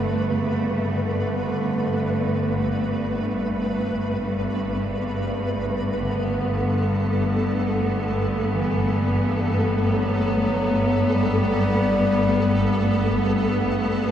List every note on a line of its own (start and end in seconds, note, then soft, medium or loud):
0.00 14.11 G1 medium
0.00 14.11 G2 medium
0.00 0.32 D3 loud
0.00 6.38 A3 medium
0.00 6.00 B3 medium
0.00 6.00 B4 medium
0.30 0.93 C#3 medium
0.92 3.43 D3 medium
4.70 6.01 C#3 medium
5.96 7.27 D3 medium
5.96 14.11 A3 medium
5.96 14.11 B3 medium
5.96 14.11 A4 medium
7.28 8.55 D3 medium
8.54 9.55 E3 medium
9.84 11.14 F#3 medium
11.13 13.63 G3 loud